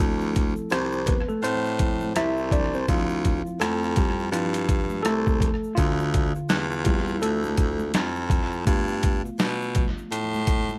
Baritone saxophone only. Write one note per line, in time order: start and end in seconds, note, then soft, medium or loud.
0.00 0.54 D2 medium
0.56 0.62 C2 soft
0.71 1.16 C2 loud
1.43 2.12 A2 medium
2.15 2.84 C2 medium
2.88 3.43 D2 loud
3.45 3.51 F2 soft
3.60 4.29 F2 medium
4.31 5.01 G2 loud
5.05 5.50 C2 medium
5.78 6.33 D2 loud
6.35 6.41 E2 soft
6.49 7.23 E2 loud
7.22 7.91 D2 medium
7.94 8.63 F2 medium
8.67 9.22 G2 medium
9.24 9.30 B2 soft
9.39 9.86 B2 medium
10.11 10.79 A2 medium